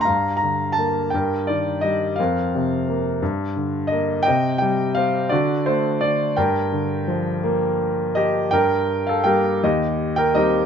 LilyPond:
<<
  \new Staff \with { instrumentName = "Grand piano" } { \time 6/8 \key g \minor \tempo 4. = 57 << { bes''8 bes''8 a''8 g''8 d''8 ees''8 | f''4. r4 ees''8 | g''8 g''8 f''8 d''8 c''8 d''8 | g''2 r8 ees''8 |
g''8. f''16 g''8 ees''8. g''16 ees''8 | } \\ { f''4. bes'4. | bes'4. r4. | ees''4. fis'4. | bes'2 r8 g'8 |
bes'8. a'16 bes'8 g'8. bes'16 g'8 | } >> }
  \new Staff \with { instrumentName = "Grand piano" } { \clef bass \time 6/8 \key g \minor g,8 d8 bes8 g,8 ees8 g8 | f,8 c8 bes8 g,8 d8 bes8 | c8 g8 c'8 d8 a8 d8 | g,8 d8 f8 bes4. |
g,4 <g bes g'>8 ees,4 <g c' ees'>8 | }
>>